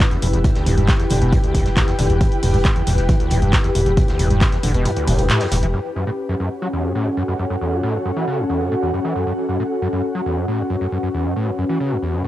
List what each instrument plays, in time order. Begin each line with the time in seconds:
Already playing: ambient pad E4 G4 B4 G5
0.00 acid bass E2, kick, snare, clap, closed hi-hat, mid tom
0.11 acid bass E2, snare, closed hi-hat
0.22 sub bass E1, acid bass E2, closed hi-hat, mid tom, open hi-hat
0.33 sub bass E1, acid bass E2, closed hi-hat
0.44 acid bass E2, kick, closed hi-hat, mid tom
0.55 acid bass D2, snare, closed hi-hat
0.66 sub bass E1, acid bass E2, closed hi-hat, mid tom, open hi-hat
0.77 sub bass E1, acid bass G2, closed hi-hat
0.88 acid bass E2, kick, snare, clap, closed hi-hat, mid tom
0.99 acid bass E2, snare, closed hi-hat
1.10 sub bass E1, acid bass D3, snare, closed hi-hat, mid tom, open hi-hat
1.21 sub bass E1, acid bass B2, closed hi-hat
1.32 acid bass E2, kick, closed hi-hat, mid tom
1.44 acid bass D2, closed hi-hat
1.55 sub bass E1, acid bass E2, kick, closed hi-hat, mid tom, open hi-hat
1.66 sub bass E1, acid bass G2, snare, closed hi-hat
1.77 acid bass D2, kick, snare, clap, closed hi-hat, mid tom
1.88 acid bass E2, snare, closed hi-hat
1.99 sub bass E1, acid bass D3, snare, closed hi-hat, mid tom, open hi-hat
2.10 sub bass E1, acid bass E2, closed hi-hat
2.21 acid bass E2, kick, closed hi-hat, mid tom
2.32 closed hi-hat
2.43 sub bass E1, acid bass E2, mid tom, open hi-hat
2.54 sub bass E1, acid bass G2, closed hi-hat
2.65 kick, snare, clap, closed hi-hat, mid tom
2.76 acid bass E2, closed hi-hat
2.87 sub bass E1, acid bass E2, snare, closed hi-hat, mid tom, open hi-hat
2.98 sub bass E1, snare, closed hi-hat
3.09 acid bass E3, kick, closed hi-hat, mid tom
3.20 acid bass D2, closed hi-hat
3.30 sub bass E1, acid bass E2, closed hi-hat, mid tom, open hi-hat
3.42 sub bass E1, acid bass G2, closed hi-hat
3.53 acid bass E2, kick, snare, clap, closed hi-hat, mid tom
3.64 acid bass E2, snare, closed hi-hat
3.75 sub bass E1, acid bass E2, closed hi-hat, mid tom, open hi-hat
3.86 sub bass E1, acid bass E2, closed hi-hat
3.97 acid bass E2, kick, closed hi-hat, mid tom
4.08 acid bass D2, snare, closed hi-hat
4.19 sub bass E1, acid bass E2, closed hi-hat, mid tom, open hi-hat
4.30 sub bass E1, acid bass G2, closed hi-hat
4.41 acid bass E2, kick, snare, clap, closed hi-hat, mid tom
4.52 acid bass E2, snare, closed hi-hat
4.63 sub bass E1, acid bass D3, closed hi-hat, mid tom, open hi-hat
4.74 sub bass E1, acid bass B2, closed hi-hat
4.86 acid bass E2, closed hi-hat, mid tom
4.97 acid bass D2, closed hi-hat
5.08 sub bass E1, acid bass E2, mid tom, open hi-hat
5.19 sub bass E1, acid bass D2, closed hi-hat
5.30 acid bass A2, clap, closed hi-hat, mid tom
5.40 acid bass E2, clap, closed hi-hat, open hi-hat
5.51 sub bass E1, acid bass E2, snare, closed hi-hat, mid tom, open hi-hat
5.63 sub bass E1, acid bass E3, closed hi-hat
5.74 acid bass F#2, ambient pad C#4
5.95 acid bass F#2, ambient pad F#5
6.07 acid bass A2
6.24 ambient pad F#4
6.29 acid bass F#2
6.40 acid bass F#2
6.62 acid bass F#3
6.73 acid bass E2, ambient pad A4
6.84 acid bass F#2
6.95 acid bass A2
7.06 acid bass F#2
7.17 acid bass F#2
7.28 acid bass F#2
7.39 acid bass F#2
7.50 acid bass F#2
7.61 acid bass E2
7.72 acid bass F#2
7.83 acid bass A2
7.94 acid bass F#2
8.05 acid bass F#2
8.16 acid bass E3
8.27 acid bass C#3
8.38 acid bass F#2
8.50 acid bass E2
8.61 acid bass F#2
8.72 acid bass A2
8.83 acid bass E2
8.94 acid bass F#2
9.05 acid bass E3
9.16 acid bass F#2
9.27 acid bass F#2
9.49 acid bass F#2
9.60 acid bass A2
9.82 acid bass F#2
9.93 acid bass F#2
10.15 acid bass F#3
10.26 acid bass E2
10.32 ambient pad B4
10.37 acid bass F#2
10.48 acid bass A2
10.59 acid bass F#2
10.70 acid bass F#2
10.81 acid bass F#2
10.92 acid bass F#2
11.03 acid bass F#2
11.14 acid bass E2
11.25 acid bass F#2
11.36 acid bass A2
11.47 acid bass F#2
11.58 acid bass F#2
11.69 acid bass E3
11.80 acid bass C#3
11.91 acid bass F#2
12.02 acid bass E2
12.14 acid bass F#2
12.25 acid bass A2